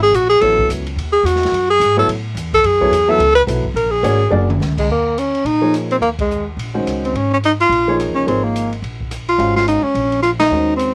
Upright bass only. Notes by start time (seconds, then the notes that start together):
Already playing: G#1
0.12 A#1
0.41 A1
0.69 C#2
0.96 D#2
1.23 E2
1.52 F#2
1.80 G#2
2.07 A2
2.35 E2
2.64 F#2
2.91 E2
3.18 C#2
3.47 B1
3.65 muted upright bass stroke
3.74 A#1
4.03 G#1
4.31 F#1
4.60 C#2
4.88 D#2
5.44 A#2
6.01 D#2
6.57 A#1
6.85 C#2
7.14 G#1
7.69 A#1
8.07 D#2
8.17 C#2
8.27 G#1
8.82 A#1
9.38 G#1
9.83 muted upright bass stroke
9.94 A#1
10.50 D#2